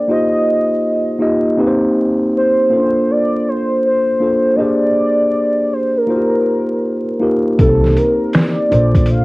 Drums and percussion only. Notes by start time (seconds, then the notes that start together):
7.59 kick, closed hi-hat
7.84 snare
7.96 closed hi-hat
8.33 finger snap, snare, closed hi-hat
8.72 closed hi-hat
8.95 kick, closed hi-hat
9.06 closed hi-hat